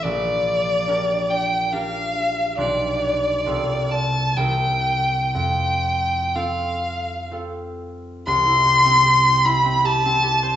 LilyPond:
<<
  \new Staff \with { instrumentName = "Violin" } { \time 3/4 \key f \major \tempo 4 = 69 d''4. g''8 f''4 | d''4. a''8 g''4 | g''4 f''4 r4 | \key c \major c'''4. b''8 a''4 | }
  \new Staff \with { instrumentName = "Harp" } { \time 3/4 \key f \major bes,,4 <d' g' bes'>4 <d' g' bes'>4 | <b,, d' f' g'>4 <c, c' f' a'>4 <c, c' e' bes'>4 | f,4 <c' f' a'>4 <c' f' a'>4 | \key c \major c,16 e'16 g'16 c'16 g'16 c''16 e'16 c'16 g'16 c'16 g'16 c''16 | }
>>